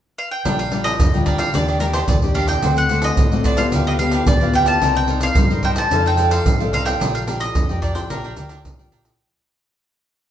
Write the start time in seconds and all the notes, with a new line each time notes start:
0.18 F5
0.31 G5
0.45 A#1 A#2 G3 D4 F4 A#4 D5 G5, pandeiro, shaker, surdo
0.59 F5, pandeiro, shaker
0.71 G3 D4 F4 A#4 D5 G5, pandeiro
0.84 D#5, pandeiro, shaker
0.99 F2 F3, pandeiro, shaker, surdo
1.14 D2 G3 D4 F4 A#4 D5 G5, pandeiro, shaker
1.26 D4 A#4 D5 G5, pandeiro, surdo
1.38 A#4 D5 F5 G5, pandeiro, shaker
1.54 D#2 D#3 A#3 D4 G4 D5 D#5, pandeiro, shaker, surdo
1.68 D4 G4 D5 D#5, pandeiro, shaker
1.80 A#3 D4 G4 A#4 D5 D#5, pandeiro, shaker
1.93 D4 G4 C5 D5 D#5, pandeiro, shaker
2.08 D#2 A#2 D5, pandeiro, shaker, surdo
2.22 A#3 D4 G4 D5 D#5, pandeiro, shaker
2.35 D4 G4 D5 D#5 F5, pandeiro
2.47 G4 D5 D#5 G5, pandeiro, shaker
2.62 D2 D3 A3 C4 D4 F#4 C5 D5 F#5, pandeiro, shaker, surdo
2.77 F#5, pandeiro, shaker
2.89 A3 C4 D4 F#4 C5 D5 F#5, pandeiro, shaker
3.02 D#5, pandeiro, shaker
3.17 A1 A2, pandeiro, shaker, surdo
3.32 A1 A3 C4 F#4 C5 D5 F#5, pandeiro, shaker
3.44 D4 C5 D5 F#5, pandeiro, shaker, surdo
3.57 B3 F4 G4 C5 D5 F5 F#5, pandeiro, shaker
3.72 D2 D3 D4 G4 B4 F5, pandeiro, shaker, surdo
3.87 D4 G4 B4 D#5 F5, pandeiro, shaker
3.99 B3 D4 F4 G4 B4 F5, pandeiro
4.11 D4 G4 B4 F5, pandeiro, shaker
4.26 D2 D3 D5, pandeiro, shaker, surdo
4.40 B3 F4 G4 B4 F5, pandeiro, shaker
4.53 D4 G4 B4 F5 G5, pandeiro, shaker
4.66 G4 B4 F5 A5, pandeiro, shaker
4.82 C2 C4 D#4 A#4 C5 D5 D#5, pandeiro, shaker, surdo
4.95 G5, pandeiro, shaker
5.08 D#4 A#4 C5 D5 D#5, pandeiro
5.21 F5, pandeiro, shaker
5.35 G2 G3, pandeiro, shaker, surdo
5.50 G2 D#4 A#4 C5 D5 D#5, pandeiro, shaker
5.63 D#4 A#4 C5 D#5 G5, pandeiro, surdo
5.76 A#4 C5 D#5 A5, pandeiro, shaker
5.91 F2 F3 D#4 A4 C5 D5 F5, pandeiro, shaker, surdo
6.05 D#4 A4 C5 F5 G5, pandeiro, shaker
6.17 D#4 A4 C5 D5 F5, pandeiro, shaker
6.31 D#4 A4 C5 F5, pandeiro, shaker
6.46 C2 C3, pandeiro, shaker, surdo
6.60 D#4 A4 C5 D5 F5, pandeiro, shaker
6.73 D#4 A4 C5 F5, pandeiro, shaker
6.85 A4 C5 F5 G5, pandeiro, shaker
7.00 A#1 A#3 D4 F4 G4 A#4 D5 G5, pandeiro, shaker, surdo
7.15 F5, pandeiro, shaker
7.27 D4 F4 G4 A#4 D5 G5, pandeiro, shaker
7.40 D#5, pandeiro, shaker
7.55 F2 F3, pandeiro, shaker, surdo
7.69 F2 F4 G4 A#4 D5 G5, pandeiro, shaker
7.82 D4 A#4 D5 G5, pandeiro, shaker, surdo
7.95 F4 G4 A#4 C5 D5 G5, pandeiro, shaker
8.10 A#1 A#3 D4 F4 G4 A#4 D5 G5, pandeiro, shaker, surdo
8.24 D4 A#4 D5 G5, pandeiro, shaker
8.36 D2 D4 F4 G4 A#4 D5 G5, pandeiro, shaker
8.49 D4 A#4 D5 G5, pandeiro, shaker
8.64 C2 F3, pandeiro, shaker, surdo
8.78 F4 G4 A#4 D5 G5, pandeiro, shaker
8.92 A#1 D4 A#4 D5 G5, pandeiro, shaker
9.05 D5, pandeiro, shaker